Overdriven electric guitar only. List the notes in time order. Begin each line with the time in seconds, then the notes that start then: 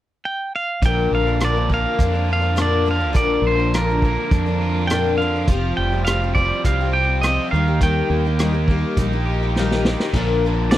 0.83 A#2
1.12 D3
1.42 D3
1.71 A#3
2.00 D4
2.29 F4
2.59 D4
2.88 D3
3.15 A#2
3.45 D3
3.75 D3
4.05 A#3
4.32 D4
4.62 F4
4.91 D4
5.20 D3
5.49 F3
5.78 G3
6.06 F3
6.36 G3
6.65 C4
6.93 G4
7.24 C4
7.51 D#3
7.82 D#3
8.10 A#3
8.40 D#3
8.68 A#3
8.99 D#4
9.26 G4
9.55 D#4
9.86 D#3
10.14 A#2
10.46 D3